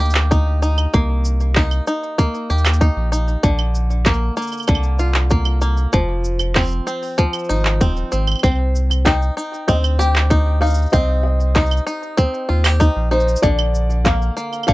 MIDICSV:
0, 0, Header, 1, 5, 480
1, 0, Start_track
1, 0, Key_signature, -3, "minor"
1, 0, Tempo, 625000
1, 718, Time_signature, 4, 2, 24, 8
1, 11316, End_track
2, 0, Start_track
2, 0, Title_t, "Felt piano"
2, 0, Program_c, 0, 0
2, 6950, Note_on_c, 0, 79, 91
2, 7431, Note_on_c, 0, 75, 79
2, 7448, Note_off_c, 0, 79, 0
2, 7486, Note_off_c, 0, 75, 0
2, 7673, Note_on_c, 0, 79, 91
2, 8125, Note_off_c, 0, 79, 0
2, 8146, Note_on_c, 0, 77, 79
2, 8388, Note_on_c, 0, 75, 86
2, 8400, Note_off_c, 0, 77, 0
2, 8616, Note_off_c, 0, 75, 0
2, 8627, Note_on_c, 0, 75, 74
2, 9562, Note_off_c, 0, 75, 0
2, 10072, Note_on_c, 0, 72, 85
2, 10298, Note_off_c, 0, 72, 0
2, 10309, Note_on_c, 0, 74, 104
2, 10787, Note_on_c, 0, 77, 98
2, 10808, Note_off_c, 0, 74, 0
2, 11242, Note_off_c, 0, 77, 0
2, 11266, Note_on_c, 0, 77, 95
2, 11316, Note_off_c, 0, 77, 0
2, 11316, End_track
3, 0, Start_track
3, 0, Title_t, "Five-string banjo"
3, 0, Program_c, 1, 105
3, 0, Note_on_c, 1, 58, 79
3, 0, Note_on_c, 1, 63, 60
3, 0, Note_on_c, 1, 67, 61
3, 228, Note_off_c, 1, 63, 0
3, 237, Note_on_c, 1, 63, 63
3, 470, Note_off_c, 1, 63, 0
3, 479, Note_on_c, 1, 63, 61
3, 719, Note_off_c, 1, 58, 0
3, 719, Note_on_c, 1, 58, 81
3, 1190, Note_off_c, 1, 63, 0
3, 1199, Note_on_c, 1, 63, 63
3, 1430, Note_off_c, 1, 63, 0
3, 1439, Note_on_c, 1, 63, 57
3, 1676, Note_off_c, 1, 58, 0
3, 1676, Note_on_c, 1, 58, 79
3, 1910, Note_off_c, 1, 67, 0
3, 1919, Note_on_c, 1, 67, 57
3, 2148, Note_off_c, 1, 63, 0
3, 2157, Note_on_c, 1, 63, 65
3, 2387, Note_off_c, 1, 63, 0
3, 2396, Note_on_c, 1, 63, 57
3, 2636, Note_on_c, 1, 50, 81
3, 2685, Note_off_c, 1, 63, 0
3, 2687, Note_off_c, 1, 67, 0
3, 2752, Note_off_c, 1, 58, 0
3, 3116, Note_on_c, 1, 58, 68
3, 3346, Note_off_c, 1, 58, 0
3, 3355, Note_on_c, 1, 58, 61
3, 3583, Note_off_c, 1, 50, 0
3, 3592, Note_on_c, 1, 50, 81
3, 3835, Note_on_c, 1, 65, 58
3, 4066, Note_off_c, 1, 58, 0
3, 4075, Note_on_c, 1, 58, 62
3, 4304, Note_off_c, 1, 58, 0
3, 4313, Note_on_c, 1, 58, 60
3, 4550, Note_off_c, 1, 50, 0
3, 4553, Note_on_c, 1, 53, 81
3, 4604, Note_off_c, 1, 58, 0
3, 4910, Note_off_c, 1, 65, 0
3, 5034, Note_on_c, 1, 60, 71
3, 5275, Note_off_c, 1, 60, 0
3, 5275, Note_on_c, 1, 60, 58
3, 5504, Note_off_c, 1, 53, 0
3, 5514, Note_on_c, 1, 53, 80
3, 5755, Note_on_c, 1, 63, 60
3, 5993, Note_off_c, 1, 60, 0
3, 5996, Note_on_c, 1, 60, 62
3, 6235, Note_off_c, 1, 60, 0
3, 6235, Note_on_c, 1, 60, 58
3, 6473, Note_off_c, 1, 53, 0
3, 6476, Note_off_c, 1, 60, 0
3, 6476, Note_on_c, 1, 60, 80
3, 6830, Note_off_c, 1, 63, 0
3, 6957, Note_on_c, 1, 63, 69
3, 7186, Note_off_c, 1, 63, 0
3, 7196, Note_on_c, 1, 63, 60
3, 7426, Note_off_c, 1, 60, 0
3, 7435, Note_on_c, 1, 60, 81
3, 7673, Note_on_c, 1, 67, 63
3, 7903, Note_off_c, 1, 63, 0
3, 7912, Note_on_c, 1, 63, 64
3, 8143, Note_off_c, 1, 63, 0
3, 8153, Note_on_c, 1, 63, 62
3, 8384, Note_off_c, 1, 60, 0
3, 8393, Note_on_c, 1, 60, 81
3, 8864, Note_off_c, 1, 63, 0
3, 8873, Note_on_c, 1, 63, 71
3, 9104, Note_off_c, 1, 63, 0
3, 9113, Note_on_c, 1, 63, 60
3, 9341, Note_off_c, 1, 60, 0
3, 9350, Note_on_c, 1, 60, 84
3, 9587, Note_off_c, 1, 63, 0
3, 9590, Note_on_c, 1, 65, 60
3, 9596, Note_off_c, 1, 67, 0
3, 9710, Note_off_c, 1, 65, 0
3, 9710, Note_on_c, 1, 67, 52
3, 9830, Note_on_c, 1, 63, 63
3, 10061, Note_off_c, 1, 63, 0
3, 10070, Note_on_c, 1, 63, 60
3, 10313, Note_on_c, 1, 50, 85
3, 10314, Note_off_c, 1, 60, 0
3, 10362, Note_off_c, 1, 63, 0
3, 10362, Note_off_c, 1, 67, 0
3, 10793, Note_on_c, 1, 58, 65
3, 11024, Note_off_c, 1, 58, 0
3, 11033, Note_on_c, 1, 58, 59
3, 11264, Note_off_c, 1, 50, 0
3, 11273, Note_on_c, 1, 50, 83
3, 11316, Note_off_c, 1, 50, 0
3, 11316, Note_off_c, 1, 58, 0
3, 11316, End_track
4, 0, Start_track
4, 0, Title_t, "Sub bass"
4, 0, Program_c, 2, 38
4, 0, Note_on_c, 2, 38, 75
4, 668, Note_off_c, 2, 38, 0
4, 723, Note_on_c, 2, 36, 83
4, 1388, Note_off_c, 2, 36, 0
4, 1921, Note_on_c, 2, 39, 100
4, 2227, Note_off_c, 2, 39, 0
4, 2277, Note_on_c, 2, 34, 72
4, 2584, Note_off_c, 2, 34, 0
4, 2641, Note_on_c, 2, 34, 84
4, 3306, Note_off_c, 2, 34, 0
4, 3601, Note_on_c, 2, 36, 82
4, 4507, Note_off_c, 2, 36, 0
4, 4560, Note_on_c, 2, 29, 95
4, 5226, Note_off_c, 2, 29, 0
4, 5760, Note_on_c, 2, 32, 99
4, 5996, Note_off_c, 2, 32, 0
4, 6000, Note_on_c, 2, 27, 99
4, 6173, Note_off_c, 2, 27, 0
4, 6242, Note_on_c, 2, 32, 97
4, 6414, Note_off_c, 2, 32, 0
4, 6481, Note_on_c, 2, 36, 87
4, 7146, Note_off_c, 2, 36, 0
4, 7439, Note_on_c, 2, 38, 87
4, 8346, Note_off_c, 2, 38, 0
4, 8398, Note_on_c, 2, 36, 92
4, 9065, Note_off_c, 2, 36, 0
4, 9597, Note_on_c, 2, 39, 97
4, 9904, Note_off_c, 2, 39, 0
4, 9954, Note_on_c, 2, 34, 73
4, 10263, Note_off_c, 2, 34, 0
4, 10318, Note_on_c, 2, 34, 85
4, 10985, Note_off_c, 2, 34, 0
4, 11279, Note_on_c, 2, 36, 79
4, 11316, Note_off_c, 2, 36, 0
4, 11316, End_track
5, 0, Start_track
5, 0, Title_t, "Drums"
5, 40, Note_on_c, 9, 82, 39
5, 78, Note_off_c, 9, 82, 0
5, 78, Note_on_c, 9, 82, 51
5, 113, Note_on_c, 9, 39, 80
5, 154, Note_off_c, 9, 82, 0
5, 190, Note_off_c, 9, 39, 0
5, 241, Note_on_c, 9, 82, 40
5, 243, Note_on_c, 9, 36, 100
5, 317, Note_off_c, 9, 82, 0
5, 320, Note_off_c, 9, 36, 0
5, 480, Note_on_c, 9, 82, 72
5, 557, Note_off_c, 9, 82, 0
5, 598, Note_on_c, 9, 75, 71
5, 601, Note_on_c, 9, 82, 32
5, 675, Note_off_c, 9, 75, 0
5, 678, Note_off_c, 9, 82, 0
5, 719, Note_on_c, 9, 82, 40
5, 723, Note_on_c, 9, 36, 90
5, 795, Note_off_c, 9, 82, 0
5, 800, Note_off_c, 9, 36, 0
5, 957, Note_on_c, 9, 82, 67
5, 1034, Note_off_c, 9, 82, 0
5, 1078, Note_on_c, 9, 82, 31
5, 1154, Note_off_c, 9, 82, 0
5, 1193, Note_on_c, 9, 39, 76
5, 1197, Note_on_c, 9, 82, 38
5, 1203, Note_on_c, 9, 36, 106
5, 1270, Note_off_c, 9, 39, 0
5, 1274, Note_off_c, 9, 82, 0
5, 1280, Note_off_c, 9, 36, 0
5, 1315, Note_on_c, 9, 75, 67
5, 1319, Note_on_c, 9, 82, 28
5, 1392, Note_off_c, 9, 75, 0
5, 1395, Note_off_c, 9, 82, 0
5, 1437, Note_on_c, 9, 82, 71
5, 1514, Note_off_c, 9, 82, 0
5, 1562, Note_on_c, 9, 82, 31
5, 1639, Note_off_c, 9, 82, 0
5, 1681, Note_on_c, 9, 36, 98
5, 1681, Note_on_c, 9, 82, 44
5, 1758, Note_off_c, 9, 36, 0
5, 1758, Note_off_c, 9, 82, 0
5, 1801, Note_on_c, 9, 82, 30
5, 1878, Note_off_c, 9, 82, 0
5, 1921, Note_on_c, 9, 82, 32
5, 1981, Note_off_c, 9, 82, 0
5, 1981, Note_on_c, 9, 82, 39
5, 2039, Note_on_c, 9, 39, 77
5, 2039, Note_on_c, 9, 75, 69
5, 2042, Note_off_c, 9, 82, 0
5, 2042, Note_on_c, 9, 82, 51
5, 2100, Note_off_c, 9, 82, 0
5, 2100, Note_on_c, 9, 82, 60
5, 2115, Note_off_c, 9, 39, 0
5, 2115, Note_off_c, 9, 75, 0
5, 2160, Note_off_c, 9, 82, 0
5, 2160, Note_on_c, 9, 36, 99
5, 2160, Note_on_c, 9, 82, 42
5, 2237, Note_off_c, 9, 36, 0
5, 2237, Note_off_c, 9, 82, 0
5, 2401, Note_on_c, 9, 82, 79
5, 2477, Note_off_c, 9, 82, 0
5, 2519, Note_on_c, 9, 82, 31
5, 2596, Note_off_c, 9, 82, 0
5, 2640, Note_on_c, 9, 36, 104
5, 2640, Note_on_c, 9, 82, 44
5, 2716, Note_off_c, 9, 36, 0
5, 2717, Note_off_c, 9, 82, 0
5, 2755, Note_on_c, 9, 75, 66
5, 2832, Note_off_c, 9, 75, 0
5, 2878, Note_on_c, 9, 82, 66
5, 2955, Note_off_c, 9, 82, 0
5, 3000, Note_on_c, 9, 82, 32
5, 3076, Note_off_c, 9, 82, 0
5, 3116, Note_on_c, 9, 39, 72
5, 3119, Note_on_c, 9, 82, 44
5, 3120, Note_on_c, 9, 36, 106
5, 3178, Note_off_c, 9, 82, 0
5, 3178, Note_on_c, 9, 82, 31
5, 3193, Note_off_c, 9, 39, 0
5, 3197, Note_off_c, 9, 36, 0
5, 3255, Note_off_c, 9, 82, 0
5, 3356, Note_on_c, 9, 82, 65
5, 3395, Note_off_c, 9, 82, 0
5, 3395, Note_on_c, 9, 82, 54
5, 3435, Note_off_c, 9, 82, 0
5, 3435, Note_on_c, 9, 82, 45
5, 3470, Note_on_c, 9, 75, 32
5, 3474, Note_off_c, 9, 82, 0
5, 3474, Note_on_c, 9, 82, 38
5, 3514, Note_off_c, 9, 82, 0
5, 3514, Note_on_c, 9, 82, 31
5, 3532, Note_off_c, 9, 75, 0
5, 3532, Note_on_c, 9, 75, 43
5, 3553, Note_off_c, 9, 82, 0
5, 3553, Note_on_c, 9, 82, 26
5, 3590, Note_off_c, 9, 75, 0
5, 3590, Note_on_c, 9, 75, 48
5, 3593, Note_off_c, 9, 82, 0
5, 3593, Note_on_c, 9, 82, 45
5, 3600, Note_on_c, 9, 36, 101
5, 3648, Note_off_c, 9, 75, 0
5, 3648, Note_on_c, 9, 75, 58
5, 3670, Note_off_c, 9, 82, 0
5, 3677, Note_off_c, 9, 36, 0
5, 3712, Note_on_c, 9, 82, 29
5, 3725, Note_off_c, 9, 75, 0
5, 3789, Note_off_c, 9, 82, 0
5, 3832, Note_on_c, 9, 82, 66
5, 3909, Note_off_c, 9, 82, 0
5, 3950, Note_on_c, 9, 39, 75
5, 3953, Note_on_c, 9, 82, 31
5, 4026, Note_off_c, 9, 39, 0
5, 4030, Note_off_c, 9, 82, 0
5, 4072, Note_on_c, 9, 82, 41
5, 4080, Note_on_c, 9, 36, 103
5, 4149, Note_off_c, 9, 82, 0
5, 4157, Note_off_c, 9, 36, 0
5, 4188, Note_on_c, 9, 75, 71
5, 4265, Note_off_c, 9, 75, 0
5, 4311, Note_on_c, 9, 82, 74
5, 4388, Note_off_c, 9, 82, 0
5, 4433, Note_on_c, 9, 82, 31
5, 4510, Note_off_c, 9, 82, 0
5, 4552, Note_on_c, 9, 82, 42
5, 4560, Note_on_c, 9, 36, 99
5, 4628, Note_off_c, 9, 82, 0
5, 4636, Note_off_c, 9, 36, 0
5, 4795, Note_on_c, 9, 82, 68
5, 4872, Note_off_c, 9, 82, 0
5, 4910, Note_on_c, 9, 75, 69
5, 4913, Note_on_c, 9, 82, 33
5, 4987, Note_off_c, 9, 75, 0
5, 4990, Note_off_c, 9, 82, 0
5, 5032, Note_on_c, 9, 39, 71
5, 5036, Note_on_c, 9, 82, 19
5, 5039, Note_on_c, 9, 36, 99
5, 5054, Note_off_c, 9, 82, 0
5, 5054, Note_on_c, 9, 82, 21
5, 5070, Note_off_c, 9, 82, 0
5, 5070, Note_on_c, 9, 82, 22
5, 5085, Note_off_c, 9, 82, 0
5, 5085, Note_on_c, 9, 82, 27
5, 5105, Note_off_c, 9, 82, 0
5, 5105, Note_on_c, 9, 82, 29
5, 5109, Note_off_c, 9, 39, 0
5, 5116, Note_off_c, 9, 36, 0
5, 5124, Note_off_c, 9, 82, 0
5, 5124, Note_on_c, 9, 82, 36
5, 5136, Note_off_c, 9, 82, 0
5, 5136, Note_on_c, 9, 82, 33
5, 5213, Note_off_c, 9, 82, 0
5, 5278, Note_on_c, 9, 82, 72
5, 5354, Note_off_c, 9, 82, 0
5, 5397, Note_on_c, 9, 82, 32
5, 5415, Note_off_c, 9, 82, 0
5, 5415, Note_on_c, 9, 82, 25
5, 5431, Note_off_c, 9, 82, 0
5, 5431, Note_on_c, 9, 82, 21
5, 5446, Note_off_c, 9, 82, 0
5, 5446, Note_on_c, 9, 82, 15
5, 5462, Note_off_c, 9, 82, 0
5, 5462, Note_on_c, 9, 82, 14
5, 5480, Note_off_c, 9, 82, 0
5, 5480, Note_on_c, 9, 82, 11
5, 5500, Note_off_c, 9, 82, 0
5, 5500, Note_on_c, 9, 82, 9
5, 5514, Note_off_c, 9, 82, 0
5, 5514, Note_on_c, 9, 82, 45
5, 5519, Note_on_c, 9, 36, 94
5, 5591, Note_off_c, 9, 82, 0
5, 5596, Note_off_c, 9, 36, 0
5, 5631, Note_on_c, 9, 75, 69
5, 5635, Note_on_c, 9, 82, 28
5, 5675, Note_off_c, 9, 82, 0
5, 5675, Note_on_c, 9, 82, 22
5, 5708, Note_off_c, 9, 75, 0
5, 5716, Note_off_c, 9, 82, 0
5, 5716, Note_on_c, 9, 82, 19
5, 5758, Note_off_c, 9, 82, 0
5, 5758, Note_on_c, 9, 82, 68
5, 5799, Note_off_c, 9, 82, 0
5, 5799, Note_on_c, 9, 82, 12
5, 5838, Note_off_c, 9, 82, 0
5, 5838, Note_on_c, 9, 82, 10
5, 5876, Note_on_c, 9, 39, 73
5, 5879, Note_off_c, 9, 82, 0
5, 5879, Note_on_c, 9, 82, 33
5, 5952, Note_off_c, 9, 39, 0
5, 5956, Note_off_c, 9, 82, 0
5, 5999, Note_on_c, 9, 36, 107
5, 5999, Note_on_c, 9, 82, 43
5, 6075, Note_off_c, 9, 82, 0
5, 6076, Note_off_c, 9, 36, 0
5, 6118, Note_on_c, 9, 82, 31
5, 6195, Note_off_c, 9, 82, 0
5, 6236, Note_on_c, 9, 82, 74
5, 6313, Note_off_c, 9, 82, 0
5, 6354, Note_on_c, 9, 75, 70
5, 6386, Note_off_c, 9, 75, 0
5, 6386, Note_on_c, 9, 75, 53
5, 6417, Note_off_c, 9, 75, 0
5, 6417, Note_on_c, 9, 75, 44
5, 6446, Note_off_c, 9, 75, 0
5, 6446, Note_on_c, 9, 75, 39
5, 6478, Note_off_c, 9, 75, 0
5, 6478, Note_on_c, 9, 75, 29
5, 6480, Note_on_c, 9, 36, 88
5, 6482, Note_on_c, 9, 82, 40
5, 6508, Note_off_c, 9, 75, 0
5, 6508, Note_on_c, 9, 75, 24
5, 6557, Note_off_c, 9, 36, 0
5, 6559, Note_off_c, 9, 82, 0
5, 6570, Note_off_c, 9, 75, 0
5, 6570, Note_on_c, 9, 75, 15
5, 6647, Note_off_c, 9, 75, 0
5, 6723, Note_on_c, 9, 82, 67
5, 6800, Note_off_c, 9, 82, 0
5, 6843, Note_on_c, 9, 75, 75
5, 6846, Note_on_c, 9, 82, 34
5, 6920, Note_off_c, 9, 75, 0
5, 6923, Note_off_c, 9, 82, 0
5, 6959, Note_on_c, 9, 36, 95
5, 6960, Note_on_c, 9, 39, 67
5, 6964, Note_on_c, 9, 82, 41
5, 7036, Note_off_c, 9, 36, 0
5, 7037, Note_off_c, 9, 39, 0
5, 7041, Note_off_c, 9, 82, 0
5, 7082, Note_on_c, 9, 82, 29
5, 7159, Note_off_c, 9, 82, 0
5, 7204, Note_on_c, 9, 82, 70
5, 7281, Note_off_c, 9, 82, 0
5, 7326, Note_on_c, 9, 82, 30
5, 7402, Note_off_c, 9, 82, 0
5, 7439, Note_on_c, 9, 36, 96
5, 7441, Note_on_c, 9, 82, 42
5, 7515, Note_off_c, 9, 36, 0
5, 7517, Note_off_c, 9, 82, 0
5, 7558, Note_on_c, 9, 75, 76
5, 7562, Note_on_c, 9, 82, 29
5, 7635, Note_off_c, 9, 75, 0
5, 7638, Note_off_c, 9, 82, 0
5, 7684, Note_on_c, 9, 82, 68
5, 7760, Note_off_c, 9, 82, 0
5, 7800, Note_on_c, 9, 39, 72
5, 7804, Note_on_c, 9, 82, 31
5, 7877, Note_off_c, 9, 39, 0
5, 7881, Note_off_c, 9, 82, 0
5, 7918, Note_on_c, 9, 36, 103
5, 7923, Note_on_c, 9, 82, 42
5, 7995, Note_off_c, 9, 36, 0
5, 8000, Note_off_c, 9, 82, 0
5, 8162, Note_on_c, 9, 82, 33
5, 8191, Note_off_c, 9, 82, 0
5, 8191, Note_on_c, 9, 82, 43
5, 8219, Note_off_c, 9, 82, 0
5, 8219, Note_on_c, 9, 82, 49
5, 8249, Note_off_c, 9, 82, 0
5, 8249, Note_on_c, 9, 82, 64
5, 8280, Note_off_c, 9, 82, 0
5, 8280, Note_on_c, 9, 82, 28
5, 8341, Note_off_c, 9, 82, 0
5, 8341, Note_on_c, 9, 82, 18
5, 8370, Note_off_c, 9, 82, 0
5, 8370, Note_on_c, 9, 82, 16
5, 8397, Note_on_c, 9, 36, 93
5, 8400, Note_off_c, 9, 82, 0
5, 8400, Note_on_c, 9, 82, 41
5, 8474, Note_off_c, 9, 36, 0
5, 8477, Note_off_c, 9, 82, 0
5, 8758, Note_on_c, 9, 82, 30
5, 8835, Note_off_c, 9, 82, 0
5, 8876, Note_on_c, 9, 36, 96
5, 8876, Note_on_c, 9, 39, 66
5, 8879, Note_on_c, 9, 82, 16
5, 8952, Note_off_c, 9, 39, 0
5, 8953, Note_off_c, 9, 36, 0
5, 8956, Note_off_c, 9, 82, 0
5, 8958, Note_on_c, 9, 82, 24
5, 8996, Note_on_c, 9, 75, 72
5, 8999, Note_off_c, 9, 82, 0
5, 8999, Note_on_c, 9, 82, 26
5, 9038, Note_off_c, 9, 82, 0
5, 9038, Note_on_c, 9, 82, 32
5, 9072, Note_off_c, 9, 75, 0
5, 9115, Note_off_c, 9, 82, 0
5, 9117, Note_on_c, 9, 82, 65
5, 9194, Note_off_c, 9, 82, 0
5, 9238, Note_on_c, 9, 82, 30
5, 9315, Note_off_c, 9, 82, 0
5, 9357, Note_on_c, 9, 36, 94
5, 9359, Note_on_c, 9, 82, 38
5, 9433, Note_off_c, 9, 36, 0
5, 9436, Note_off_c, 9, 82, 0
5, 9479, Note_on_c, 9, 82, 30
5, 9556, Note_off_c, 9, 82, 0
5, 9715, Note_on_c, 9, 39, 73
5, 9715, Note_on_c, 9, 75, 84
5, 9719, Note_on_c, 9, 82, 33
5, 9792, Note_off_c, 9, 39, 0
5, 9792, Note_off_c, 9, 75, 0
5, 9796, Note_off_c, 9, 82, 0
5, 9837, Note_on_c, 9, 36, 97
5, 9839, Note_on_c, 9, 82, 42
5, 9913, Note_off_c, 9, 36, 0
5, 9916, Note_off_c, 9, 82, 0
5, 10080, Note_on_c, 9, 82, 34
5, 10139, Note_off_c, 9, 82, 0
5, 10139, Note_on_c, 9, 82, 40
5, 10200, Note_off_c, 9, 82, 0
5, 10200, Note_on_c, 9, 82, 46
5, 10260, Note_off_c, 9, 82, 0
5, 10260, Note_on_c, 9, 82, 57
5, 10317, Note_on_c, 9, 36, 95
5, 10320, Note_off_c, 9, 82, 0
5, 10320, Note_on_c, 9, 82, 37
5, 10394, Note_off_c, 9, 36, 0
5, 10396, Note_off_c, 9, 82, 0
5, 10435, Note_on_c, 9, 75, 84
5, 10511, Note_off_c, 9, 75, 0
5, 10558, Note_on_c, 9, 82, 66
5, 10635, Note_off_c, 9, 82, 0
5, 10678, Note_on_c, 9, 82, 33
5, 10754, Note_off_c, 9, 82, 0
5, 10797, Note_on_c, 9, 36, 98
5, 10797, Note_on_c, 9, 39, 71
5, 10800, Note_on_c, 9, 82, 39
5, 10873, Note_off_c, 9, 39, 0
5, 10874, Note_off_c, 9, 36, 0
5, 10877, Note_off_c, 9, 82, 0
5, 10922, Note_on_c, 9, 82, 29
5, 10998, Note_off_c, 9, 82, 0
5, 11039, Note_on_c, 9, 82, 64
5, 11115, Note_off_c, 9, 82, 0
5, 11156, Note_on_c, 9, 75, 35
5, 11160, Note_on_c, 9, 82, 29
5, 11233, Note_off_c, 9, 75, 0
5, 11237, Note_off_c, 9, 82, 0
5, 11238, Note_on_c, 9, 75, 51
5, 11278, Note_on_c, 9, 36, 100
5, 11279, Note_on_c, 9, 82, 42
5, 11315, Note_off_c, 9, 75, 0
5, 11316, Note_off_c, 9, 36, 0
5, 11316, Note_off_c, 9, 82, 0
5, 11316, End_track
0, 0, End_of_file